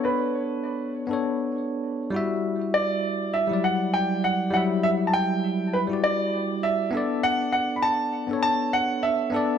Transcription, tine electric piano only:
X:1
M:4/4
L:1/16
Q:"Swing 16ths" 1/4=100
K:Bm
V:1 name="Tine electric piano"
[B,DAc]6- [B,DAc] [B,DAc]6- [B,DAc] [G,EFe]2- | [G,EFe]6- [G,EFe] [F,G,Ed]6- [F,G,Ed] [F,G,Ee]2- | [F,G,Ee]6- [F,G,Ee] [G,EFd]6- [G,EFd] [B,DAd]2- | [B,DAd]6- [B,DAd] [B,DAc]6- [B,DAc] [B,DAd]2 |]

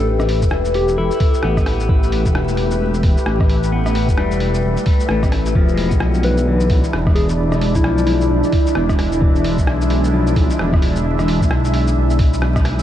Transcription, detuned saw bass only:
X:1
M:4/4
L:1/16
Q:"Swing 16ths" 1/4=131
K:Ephr
V:1 name="Detuned saw bass" clef=bass
A,,,3 E,,,4- E,,, E,,, z3 A,,,3 A,,, | A,,,3 E,,,6- E,,, E,,, z A,,,4- | A,,,3 E,,,4- E,,, E,,, z3 A,,,4 | E,,,3 B,,,6- B,,, B,,, z E,,,4- |
E,,,3 B,,,4- B,,, B,,, z3 E,,,3 E,,, | E,,,3 B,,,6- B,,, B,,, z E,,,4- | E,,,3 B,,,4- B,,, B,,,8 |]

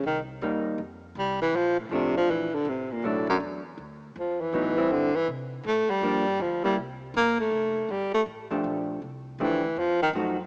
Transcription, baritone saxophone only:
X:1
M:4/4
L:1/8
Q:"Swing" 1/4=160
K:F
V:1 name="Baritone saxophone" clef=bass
_E, z4 z G, =E, | F, A,, C, F, E, D, C, B,, | A,, ^F,, z4 =F, E,- | E,2 D, E, z2 A, G,- |
G,2 F, G, z2 B, A,- | A,2 G, A, z4 | z2 E,2 F, _E, z2 |]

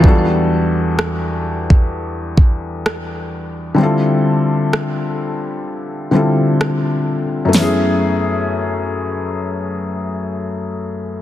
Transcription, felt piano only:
X:1
M:4/4
L:1/8
Q:"Swing 16ths" 1/4=64
K:F#phr
V:1 name="Felt piano"
[E,,F,G,B,DFA]8 | [D,G,=CE=FA]4- [D,G,CEFA] [D,G,CEFA]3 | [F,,A,B,CE^G]8 |]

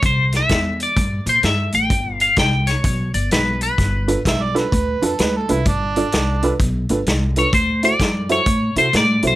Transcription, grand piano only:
X:1
M:4/4
L:1/16
Q:"Swing" 1/4=128
K:Gmix
V:1 name="Grand piano"
z16 | z16 | z2 [DFAB] z3 [DFAB] z3 [DFAB] z3 [DFAB] z | z2 [DFAd] z3 [DFAB] z3 [DFAB] z3 [DFAB] z |
z2 [E^FAc] z3 [EFAc] z3 [EFAc] z3 [EFAc] z |]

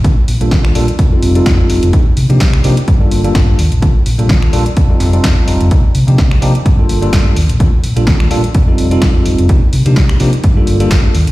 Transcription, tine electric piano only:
X:1
M:4/4
L:1/16
Q:"Swing 16ths" 1/4=127
K:Cdor
V:1 name="Tine electric piano"
[G,B,DFA] z2 [G,B,DFA]3 [G,B,DFA] z2 [G,CEFA]2 [G,CEFA]4- [G,CEFA] | [F,B,DEG] z2 [F,B,DEG]3 [F,B,DEG] z2 [G,B,DFA]2 [G,B,DFA]3 z2 | [G,B,DFA] z2 [G,B,DFA]3 [G,B,DFA] z2 [G,CEFA]2 [G,CEFA]3 [G,CEFA]2 | [F,B,DEG] z2 [F,B,DEG]3 [F,B,DEG] z2 [G,B,DFA]2 [G,B,DFA]3 z2 |
[G,B,DFA] z2 [G,B,DFA]3 [G,B,DFA] z2 [G,CEFA]2 [G,CEFA]4- [G,CEFA] | [F,B,DEG] z2 [F,B,DEG]3 [F,B,DEG] z2 [G,B,DFA]2 [G,B,DFA]3 z2 |]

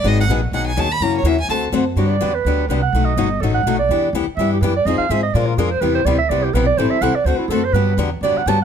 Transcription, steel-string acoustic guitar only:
X:1
M:4/4
L:1/8
Q:"Swing" 1/4=249
K:G#m
V:1 name="Steel-string acoustic guitar"
[D,F,B,DG] z [D,F,B,DG] z [D,F,B,DG] z [D,F,B,DG] z | [C,E,A,CF] z [C,E,A,CF] z [=D,=A,=CF=A] z [D,A,CFA] z | [K:G] [D,F,B,DG] z [D,F,B,DG] z [D,F,B,DG] z [D,F,B,DG] z | [B,,F,A,^DF] z [B,,F,A,DF] z [B,,F,A,DF] z [B,,F,A,DF] z |
[E,B,DG] z [E,B,DG] z [E,B,DG] z [E,B,DG] z | [=F,C_E_A] z [F,CEA] z [F,_A,D=F_B] z [F,A,DFB] z | [C,G,B,EG] z [C,G,B,EG] z [C,G,B,EG] z [C,G,B,EG] z | [E,G,CEA] z [E,G,CEA] z [D,A,CFA] z [D,A,CFA] z |
[D,F,B,DG] z [D,F,B,DG] z [D,F,B,DG] z [D,F,B,DG] z |]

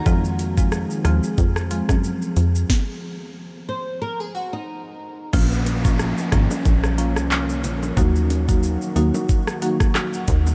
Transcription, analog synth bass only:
X:1
M:4/4
L:1/16
Q:"Swing 16ths" 1/4=91
K:Bbm
V:1 name="Analog synth bass" clef=bass
F,,4- F,, z E,, z F,,3 G,,3 F,,2 | z16 | B,,,4- B,,, z A,,, z B,,,3 C,,3 B,,,2 | E,,4- E,, z E,, z6 z E,,2 |]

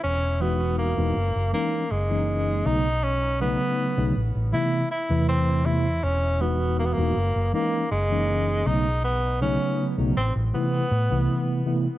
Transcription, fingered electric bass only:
X:1
M:4/4
L:1/16
Q:1/4=80
K:E
V:1 name="Fingered electric bass" clef=bass
E,,,4- E,,, E,,, F,,, F,,, z2 F,,,4 B,,,2- | B,,,3 z2 B,,, A,,, A,,, z3 E,,4- E,, | E,,,4- E,,, E,,, F,,, F,,, z2 F,,,4 B,,,2- | B,,,3 z2 B,,, A,,, A,,, z2 A,, =C,, z4 |]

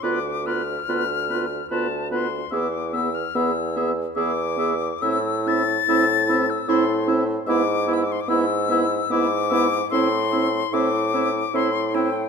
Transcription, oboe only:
X:1
M:3/4
L:1/8
Q:1/4=73
K:Am
V:1 name="Oboe"
B B B B B B | e e e e e e | e e e e e e | e e e e e e |
e e e e e e |]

